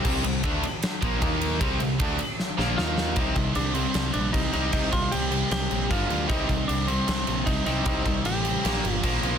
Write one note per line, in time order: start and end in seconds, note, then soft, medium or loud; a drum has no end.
0.05 0.23 C2 medium
0.05 0.23 C3 medium
0.05 0.24 G3 loud
0.05 0.24 C4 loud
0.05 kick loud
0.05 crash loud
0.24 0.42 C2 medium
0.24 0.40 C3 medium
0.24 0.40 G3 medium
0.24 ride medium
0.43 0.62 D2 loud
0.43 0.63 D3 medium
0.43 0.63 A3 loud
0.43 0.63 D4 loud
0.43 kick medium
0.43 ride medium
0.63 ride medium
0.82 snare loud
0.82 ride loud
1.02 1.20 A#1 loud
1.02 1.21 A#2 medium
1.02 1.22 F3 loud
1.02 1.21 A#3 loud
1.02 kick loud
1.02 ride medium
1.22 1.58 D#2 loud
1.22 1.60 D#3 loud
1.22 1.60 A#3 loud
1.22 1.60 D#4 loud
1.22 kick loud
1.22 ride loud
1.41 ride medium
1.61 1.79 C2 medium
1.61 1.80 C3 loud
1.61 1.80 G3 loud
1.61 1.80 C4 loud
1.61 kick loud
1.61 ride loud
1.80 1.98 C2 medium
1.80 1.96 C3 medium
1.80 1.96 G3 medium
1.80 ride medium
2.00 2.18 D2 loud
2.00 2.19 D3 loud
2.00 2.19 A3 medium
2.00 2.19 D4 loud
2.00 kick loud
2.00 ride loud
2.19 ride medium
2.39 snare medium
2.58 2.76 A#1 loud
2.58 2.77 A#2 loud
2.58 2.77 F3 medium
2.58 2.77 A#3 medium
2.58 snare medium
2.78 3.14 D#2 medium
2.78 3.16 D#3 medium
2.78 3.16 A#3 loud
2.78 3.17 D#4 loud
2.78 3.18 F4 medium
2.78 snare medium
2.98 snare loud
3.16 3.32 C2 medium
3.16 3.35 C3 medium
3.16 3.35 G3 medium
3.16 3.35 C4 loud
3.16 3.55 D#4 medium
3.16 kick loud
3.16 crash medium
3.36 3.51 C2 medium
3.36 3.54 C3 medium
3.36 3.54 G3 medium
3.36 kick medium
3.36 crash medium
3.55 3.86 C2 medium
3.55 3.73 C3 medium
3.55 3.73 G3 medium
3.55 3.74 D4 medium
3.55 crash medium
3.74 3.93 C3 medium
3.74 3.93 G3 medium
3.74 4.13 C4 medium
3.74 4.33 C4 medium
3.74 crash medium
3.94 4.10 C2 medium
3.94 4.12 C3 medium
3.94 4.12 G3 medium
3.94 snare loud
3.94 crash medium
4.14 4.30 A#1 medium
4.14 4.32 C3 medium
4.14 4.32 G3 medium
4.14 4.32 D4 medium
4.14 crash medium
4.33 4.49 C2 medium
4.33 4.51 C3 medium
4.33 4.51 G3 medium
4.33 4.73 C4 loud
4.33 4.52 D#4 medium
4.33 kick medium
4.33 crash medium
4.52 4.69 C2 medium
4.52 4.71 C3 medium
4.52 4.71 G3 medium
4.52 4.72 C4 loud
4.52 4.72 D#4 medium
4.52 crash medium
4.73 4.88 C2 medium
4.73 4.91 C3 medium
4.73 4.91 G3 loud
4.73 4.92 C4 loud
4.73 4.92 D#4 medium
4.73 kick loud
4.73 crash medium
4.92 5.08 C2 medium
4.92 5.10 C3 medium
4.92 5.10 G3 medium
4.92 5.12 F4 medium
4.92 kick medium
4.92 crash medium
5.11 5.43 C2 medium
5.11 5.30 C3 medium
5.11 5.30 G3 medium
5.11 5.51 G4 loud
5.11 crash medium
5.31 5.49 C3 medium
5.31 5.50 G3 medium
5.31 5.89 C4 medium
5.31 crash medium
5.51 5.66 C2 medium
5.51 5.69 C3 medium
5.51 5.69 G3 medium
5.51 5.92 G4 loud
5.51 snare loud
5.51 crash medium
5.71 5.86 A#1 medium
5.71 5.88 C3 medium
5.71 5.89 G3 medium
5.71 crash medium
5.90 6.06 G1 medium
5.90 6.08 G2 medium
5.90 6.09 D3 medium
5.90 6.09 G3 loud
5.90 6.28 F4 medium
5.90 kick medium
5.90 crash medium
6.09 6.25 D2 medium
6.09 6.28 G2 medium
6.09 6.29 D3 medium
6.09 6.28 G3 loud
6.09 crash medium
6.29 6.45 C2 medium
6.29 6.47 C3 medium
6.29 6.48 G3 medium
6.29 6.48 C4 loud
6.29 6.67 D#4 medium
6.29 kick loud
6.29 crash medium
6.49 6.64 C2 medium
6.49 6.67 C3 medium
6.49 6.67 G3 medium
6.49 kick medium
6.49 crash medium
6.68 6.99 C2 medium
6.68 6.86 C3 medium
6.68 6.87 G3 medium
6.68 6.87 D4 medium
6.68 crash medium
6.87 7.06 C3 medium
6.87 7.06 G3 medium
6.87 7.45 C4 medium
6.87 7.48 C4 medium
6.87 crash medium
7.08 7.23 C2 loud
7.08 7.25 C3 medium
7.08 7.26 G3 medium
7.08 snare loud
7.08 crash medium
7.27 7.43 A#1 medium
7.27 7.45 C3 medium
7.27 7.45 G3 medium
7.27 crash medium
7.46 7.62 C2 medium
7.46 7.65 C3 medium
7.46 7.65 G3 medium
7.46 7.85 C4 medium
7.46 7.65 D#4 medium
7.46 kick medium
7.46 crash medium
7.66 7.82 C2 medium
7.66 7.85 C3 medium
7.66 7.85 G3 medium
7.66 7.85 C4 medium
7.66 7.86 D#4 medium
7.66 snare soft
7.66 crash medium
7.85 8.01 C2 medium
7.85 8.05 C3 loud
7.85 8.05 G3 medium
7.85 8.05 C4 loud
7.85 8.27 D#4 medium
7.85 kick loud
7.85 crash medium
8.06 8.21 C2 medium
8.06 8.23 C3 medium
8.06 8.24 G3 medium
8.06 kick medium
8.06 crash medium
8.25 8.55 A1 medium
8.25 8.43 C3 medium
8.25 8.43 G3 medium
8.25 8.92 G4 loud
8.25 crash medium
8.43 8.63 C3 medium
8.43 8.63 G3 medium
8.43 8.62 C4 medium
8.43 crash medium
8.64 8.79 A#1 medium
8.64 8.83 A#2 medium
8.64 8.83 F3 medium
8.64 8.83 A#3 medium
8.64 snare loud
8.64 crash medium
8.84 8.99 G1 medium
8.84 9.02 A#2 medium
8.84 9.02 F3 medium
8.84 crash medium
8.92 9.19 F4 loud
9.03 9.19 A#1 medium
9.03 9.22 A#2 medium
9.03 9.22 F3 medium
9.03 9.22 A#3 medium
9.03 kick medium
9.03 crash medium
9.23 9.38 B1 medium
9.23 9.38 A#2 medium
9.23 9.38 F3 medium
9.23 9.38 A#3 loud
9.23 crash medium